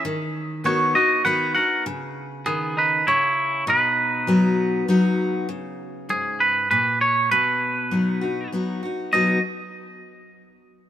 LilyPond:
<<
  \new Staff \with { instrumentName = "Clean electric guitar" } { \time 3/4 \key b \major \tempo 4 = 99 r4 <fis' cis''>8 <fis' dis''>8 <b' fis''>8 <ais' fis''>8 | r4 <b gis'>8 <dis' b'>8 <e' cis''>4 | <dis' b'>2 r4 | r4 gis'8 b'8 b'8 cis''8 |
b'2 r4 | dis''8 r2 r8 | }
  \new Staff \with { instrumentName = "Steel-string acoustic guitar" } { \time 3/4 \key b \major << { r4 <dis b dis' fis'>8 <dis' fis'>8 <dis b dis' fis'>8 <dis' fis'>8 | r2. | r4 <fis b dis' fis'>4 <fis b dis' fis'>4 | r2. |
r4 <fis b dis' fis'>8 <dis' fis'>8 <fis b dis' fis'>8 <dis' fis'>8 | <b, fis b dis' fis'>8 r2 r8 | } \\ { dis2 r4 | cis4 dis4 cis4 | b,2 r4 | cis4 gis,4 ais,4 |
b,2 r4 | r2. | } >> }
>>